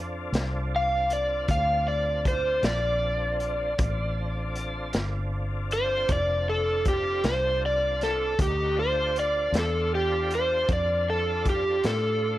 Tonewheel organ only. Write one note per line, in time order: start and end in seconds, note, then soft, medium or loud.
0.00 3.74 C4 medium
0.00 3.75 D4 medium
0.00 3.74 F4 medium
0.00 3.74 A4 medium
3.78 8.35 C4 medium
3.78 8.35 D4 medium
3.78 8.34 F4 medium
3.78 8.35 A4 medium
8.40 8.78 D#4 medium
8.40 8.78 A#4 medium
8.40 8.78 C#5 medium
8.40 8.78 F#5 soft
8.76 12.38 D4 medium
8.76 12.38 F4 medium
8.76 12.38 A4 medium
8.76 12.38 C5 medium